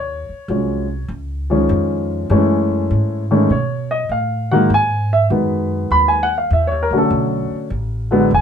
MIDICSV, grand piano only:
0, 0, Header, 1, 2, 480
1, 0, Start_track
1, 0, Tempo, 601805
1, 1825, Time_signature, 4, 2, 24, 8
1, 6711, End_track
2, 0, Start_track
2, 0, Title_t, "Grand piano"
2, 0, Program_c, 0, 0
2, 0, Note_on_c, 0, 73, 81
2, 392, Note_on_c, 0, 54, 43
2, 393, Note_on_c, 0, 53, 44
2, 397, Note_on_c, 0, 56, 43
2, 402, Note_on_c, 0, 61, 55
2, 681, Note_off_c, 0, 54, 0
2, 682, Note_off_c, 0, 53, 0
2, 684, Note_off_c, 0, 56, 0
2, 686, Note_off_c, 0, 61, 0
2, 846, Note_off_c, 0, 73, 0
2, 1196, Note_on_c, 0, 53, 68
2, 1202, Note_on_c, 0, 51, 59
2, 1203, Note_on_c, 0, 56, 57
2, 1207, Note_on_c, 0, 61, 75
2, 1797, Note_off_c, 0, 53, 0
2, 1800, Note_off_c, 0, 51, 0
2, 1801, Note_off_c, 0, 56, 0
2, 1802, Note_off_c, 0, 61, 0
2, 1835, Note_on_c, 0, 52, 70
2, 1839, Note_on_c, 0, 56, 67
2, 1841, Note_on_c, 0, 57, 67
2, 1843, Note_on_c, 0, 61, 82
2, 2571, Note_off_c, 0, 52, 0
2, 2573, Note_off_c, 0, 56, 0
2, 2574, Note_off_c, 0, 57, 0
2, 2574, Note_off_c, 0, 61, 0
2, 2639, Note_on_c, 0, 51, 72
2, 2642, Note_on_c, 0, 56, 62
2, 2643, Note_on_c, 0, 57, 62
2, 2645, Note_on_c, 0, 61, 77
2, 2774, Note_off_c, 0, 51, 0
2, 2775, Note_off_c, 0, 56, 0
2, 2776, Note_off_c, 0, 57, 0
2, 2777, Note_off_c, 0, 61, 0
2, 2805, Note_on_c, 0, 73, 78
2, 3111, Note_off_c, 0, 73, 0
2, 3118, Note_on_c, 0, 75, 87
2, 3265, Note_off_c, 0, 75, 0
2, 3283, Note_on_c, 0, 77, 76
2, 3590, Note_off_c, 0, 77, 0
2, 3601, Note_on_c, 0, 78, 87
2, 3603, Note_on_c, 0, 51, 71
2, 3605, Note_on_c, 0, 54, 64
2, 3613, Note_on_c, 0, 58, 81
2, 3614, Note_on_c, 0, 56, 66
2, 3736, Note_off_c, 0, 51, 0
2, 3737, Note_off_c, 0, 54, 0
2, 3741, Note_off_c, 0, 56, 0
2, 3741, Note_off_c, 0, 58, 0
2, 3746, Note_off_c, 0, 78, 0
2, 3782, Note_on_c, 0, 80, 95
2, 4080, Note_off_c, 0, 80, 0
2, 4091, Note_on_c, 0, 76, 89
2, 4178, Note_off_c, 0, 76, 0
2, 4228, Note_on_c, 0, 51, 55
2, 4229, Note_on_c, 0, 54, 47
2, 4238, Note_on_c, 0, 59, 61
2, 4240, Note_on_c, 0, 56, 53
2, 4719, Note_on_c, 0, 83, 91
2, 4851, Note_on_c, 0, 80, 82
2, 4870, Note_off_c, 0, 83, 0
2, 4967, Note_off_c, 0, 51, 0
2, 4968, Note_off_c, 0, 54, 0
2, 4968, Note_on_c, 0, 78, 93
2, 4972, Note_off_c, 0, 59, 0
2, 4973, Note_off_c, 0, 56, 0
2, 5017, Note_off_c, 0, 80, 0
2, 5074, Note_off_c, 0, 78, 0
2, 5087, Note_on_c, 0, 77, 74
2, 5172, Note_off_c, 0, 77, 0
2, 5209, Note_on_c, 0, 76, 78
2, 5323, Note_on_c, 0, 73, 86
2, 5355, Note_off_c, 0, 76, 0
2, 5444, Note_on_c, 0, 70, 85
2, 5492, Note_off_c, 0, 73, 0
2, 5523, Note_on_c, 0, 50, 66
2, 5525, Note_on_c, 0, 54, 66
2, 5526, Note_on_c, 0, 61, 70
2, 5530, Note_on_c, 0, 57, 60
2, 5551, Note_off_c, 0, 70, 0
2, 5564, Note_on_c, 0, 69, 73
2, 6023, Note_off_c, 0, 69, 0
2, 6120, Note_off_c, 0, 50, 0
2, 6121, Note_off_c, 0, 54, 0
2, 6121, Note_off_c, 0, 61, 0
2, 6123, Note_off_c, 0, 57, 0
2, 6467, Note_on_c, 0, 50, 78
2, 6473, Note_on_c, 0, 54, 72
2, 6475, Note_on_c, 0, 56, 69
2, 6477, Note_on_c, 0, 59, 83
2, 6607, Note_off_c, 0, 50, 0
2, 6610, Note_off_c, 0, 54, 0
2, 6611, Note_off_c, 0, 56, 0
2, 6612, Note_off_c, 0, 59, 0
2, 6655, Note_on_c, 0, 80, 91
2, 6711, Note_off_c, 0, 80, 0
2, 6711, End_track
0, 0, End_of_file